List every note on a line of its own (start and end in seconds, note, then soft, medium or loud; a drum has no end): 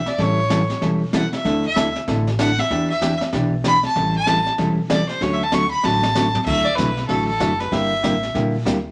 0.06 0.24 D5 medium
0.06 snare soft
0.18 0.69 A1 loud
0.18 0.39 E3 medium
0.18 0.39 G3 medium
0.18 0.39 C#4 medium
0.18 0.40 E4 medium
0.18 0.40 A4 medium
0.18 0.83 C#5 loud
0.18 brush sweep soft
0.18 kick soft
0.18 snare soft
0.50 0.61 E3 medium
0.50 0.61 G3 medium
0.50 0.62 C#4 medium
0.50 0.62 E4 medium
0.50 0.62 A4 medium
0.50 kick soft
0.50 snare medium
0.50 hi-hat pedal medium
0.70 snare soft
0.81 1.32 E1 medium
0.81 1.02 E3 medium
0.81 1.02 G3 medium
0.81 1.02 C#4 medium
0.81 1.02 E4 medium
0.81 1.03 A4 medium
0.81 brush sweep soft
0.81 kick soft
0.81 snare soft
1.13 1.24 E3 medium
1.13 1.24 G3 medium
1.13 1.25 C#4 medium
1.13 1.25 E4 medium
1.13 1.25 A4 medium
1.13 1.33 F#5 medium
1.13 kick soft
1.13 snare medium
1.13 hi-hat pedal medium
1.33 1.63 E5 medium
1.33 snare soft
1.45 1.95 D2 loud
1.45 1.65 D3 medium
1.45 1.65 A3 medium
1.45 1.65 D4 medium
1.45 1.65 E4 medium
1.45 1.65 A4 medium
1.45 brush sweep medium
1.45 kick soft
1.45 snare soft
1.65 1.94 E5 medium
1.76 1.87 D3 medium
1.76 1.87 A3 medium
1.76 1.88 D4 medium
1.76 1.88 E4 medium
1.76 1.88 A4 medium
1.76 kick soft
1.76 snare medium
1.76 hi-hat pedal medium
1.96 snare soft
2.07 2.58 A1 medium
2.07 2.28 D3 medium
2.07 2.28 A3 medium
2.07 2.28 D4 medium
2.07 2.28 E4 medium
2.07 2.28 A4 medium
2.07 brush sweep soft
2.07 kick soft
2.07 snare soft
2.27 snare soft
2.39 2.50 D3 medium
2.39 2.50 A3 medium
2.39 2.50 D4 medium
2.39 2.50 E4 medium
2.39 2.50 A4 medium
2.39 2.61 F#5 loud
2.39 kick soft
2.39 snare medium
2.39 hi-hat pedal medium
2.58 2.89 E5 medium
2.58 snare soft
2.70 3.21 E2 loud
2.70 2.91 E3 medium
2.70 2.91 B3 medium
2.70 2.91 D4 medium
2.70 2.91 G4 medium
2.70 brush sweep soft
2.70 kick soft
2.70 snare soft
2.90 3.19 E5 loud
3.01 3.13 E3 medium
3.01 3.13 B3 medium
3.01 3.13 D4 medium
3.01 3.13 G4 medium
3.01 kick soft
3.01 snare medium
3.01 hi-hat pedal medium
3.21 snare soft
3.33 3.83 B1 medium
3.33 3.53 E3 medium
3.33 3.53 B3 medium
3.33 3.53 D4 medium
3.33 3.54 G4 medium
3.33 brush sweep soft
3.33 kick soft
3.33 snare soft
3.64 3.75 E3 medium
3.64 3.75 B3 medium
3.64 3.76 D4 medium
3.64 3.76 G4 medium
3.64 3.84 B5 loud
3.64 kick soft
3.64 snare medium
3.64 hi-hat pedal medium
3.83 4.14 A5 medium
3.83 snare soft
3.96 4.46 A1 loud
3.96 4.16 E3 medium
3.96 4.16 G3 medium
3.96 4.16 C#4 medium
3.96 4.16 E4 medium
3.96 4.17 A4 medium
3.96 brush sweep medium
3.96 kick soft
3.96 snare soft
4.16 4.45 A5 loud
4.26 4.38 E3 medium
4.26 4.38 G3 medium
4.26 4.38 C#4 medium
4.26 4.38 E4 medium
4.26 4.38 A4 medium
4.26 kick soft
4.26 snare medium
4.26 hi-hat pedal medium
4.46 snare soft
4.58 5.08 E1 medium
4.58 4.79 E3 medium
4.58 4.79 G3 medium
4.58 4.79 C#4 medium
4.58 4.79 E4 medium
4.58 4.79 A4 medium
4.58 brush sweep soft
4.58 kick soft
4.58 snare soft
4.90 5.01 E3 medium
4.90 5.01 G3 medium
4.90 5.01 C#4 medium
4.90 5.01 E4 medium
4.90 5.01 A4 medium
4.90 5.08 D5 medium
4.90 kick soft
4.90 snare medium
4.90 hi-hat pedal medium
5.09 5.24 C5 medium
5.09 snare soft
5.21 5.71 D2 loud
5.21 5.42 D3 medium
5.21 5.42 F#3 medium
5.21 5.42 A3 medium
5.21 5.42 C#4 medium
5.21 5.42 F#4 medium
5.21 5.34 C#5 medium
5.21 brush sweep soft
5.21 kick soft
5.21 snare soft
5.33 5.44 E5 medium
5.43 5.55 A5 medium
5.52 5.63 D3 medium
5.52 5.64 F#3 medium
5.52 5.64 A3 medium
5.52 5.64 C#4 medium
5.52 5.64 F#4 medium
5.52 5.70 C#6 loud
5.52 kick soft
5.52 snare medium
5.52 hi-hat pedal medium
5.71 5.86 B5 medium
5.83 6.34 A1 medium
5.83 6.05 D3 medium
5.83 6.05 F#3 medium
5.83 6.05 A3 medium
5.83 6.05 C#4 medium
5.83 6.05 F#4 medium
5.83 6.41 A5 loud
5.83 snare medium
6.03 snare medium
6.15 6.26 D3 medium
6.15 6.27 F#3 medium
6.15 6.27 A3 medium
6.15 6.27 C#4 medium
6.15 6.27 F#4 medium
6.15 snare medium
6.15 hi-hat pedal medium
6.35 floor tom medium
6.46 6.77 D2 medium
6.46 6.67 D3 medium
6.46 6.67 F#3 medium
6.46 6.67 A3 medium
6.46 6.67 E4 medium
6.46 6.67 F#4 medium
6.46 6.66 E5 loud
6.46 brush sweep soft
6.46 kick medium
6.46 snare soft
6.46 crash medium
6.64 6.77 D5 loud
6.75 7.08 B1 medium
6.75 6.89 D3 medium
6.75 6.89 F#3 medium
6.75 6.89 A3 medium
6.75 6.89 E4 medium
6.75 6.89 F#4 medium
6.75 7.07 B4 medium
6.75 kick soft
6.75 snare medium
6.75 hi-hat pedal medium
6.97 snare soft
7.07 7.39 A1 medium
7.07 7.29 D3 medium
7.07 7.30 F#3 medium
7.07 7.30 A3 medium
7.07 7.30 E4 medium
7.07 7.30 F#4 medium
7.07 7.26 A4 medium
7.07 brush sweep soft
7.07 kick soft
7.07 snare soft
7.27 7.61 A4 loud
7.40 7.71 F#1 medium
7.40 7.51 D3 medium
7.40 7.52 F#3 medium
7.40 7.52 A3 medium
7.40 7.52 E4 medium
7.40 7.52 F#4 medium
7.40 kick soft
7.40 snare medium
7.40 hi-hat pedal medium
7.60 7.73 B4 medium
7.60 snare soft
7.71 8.02 G1 medium
7.71 7.92 D3 medium
7.71 7.92 G3 medium
7.71 7.92 A#3 medium
7.71 7.92 E4 medium
7.71 7.93 G4 medium
7.71 8.35 E5 loud
7.71 brush sweep soft
7.71 kick soft
7.71 snare soft
8.03 8.34 A1 medium
8.03 8.14 D3 medium
8.03 8.14 G3 medium
8.03 8.15 A#3 medium
8.03 8.15 E4 medium
8.03 8.15 G4 medium
8.03 kick soft
8.03 snare medium
8.03 hi-hat pedal medium
8.23 snare soft
8.34 8.65 A#1 medium
8.34 8.55 D3 medium
8.34 8.55 G3 medium
8.34 8.55 A#3 medium
8.34 8.55 E4 medium
8.34 8.55 G4 medium
8.34 brush sweep medium
8.34 kick soft
8.34 snare soft
8.65 8.91 D2 medium
8.65 8.77 D3 medium
8.65 8.77 G3 medium
8.65 8.77 A#3 medium
8.65 8.77 E4 medium
8.65 8.77 G4 medium
8.65 kick soft
8.65 snare medium
8.65 hi-hat pedal medium